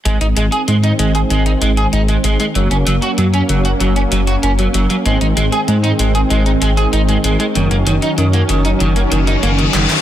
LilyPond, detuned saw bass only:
\new Staff \with { instrumentName = "Detuned saw bass" } { \clef bass \time 4/4 \key aes \mixolydian \tempo 4 = 96 aes,,16 aes,,16 aes,,16 r16 aes,8 aes,,8 aes,,8 aes,,8 aes,,8 aes,,16 r16 | ges,,16 ges,,16 ges,,16 r16 ges,8 ges,,8 ges,,8 ges,,8 ges,,8 ges,,16 r16 | aes,,16 aes,,16 aes,,16 r16 aes,8 aes,,8 aes,,8 aes,,8 aes,,8 aes,,16 r16 | ges,,16 ges,,16 ges,,16 r16 ges,8 ges,,8 ges,,8 ges,,8 ges,,8 ges,,16 r16 | }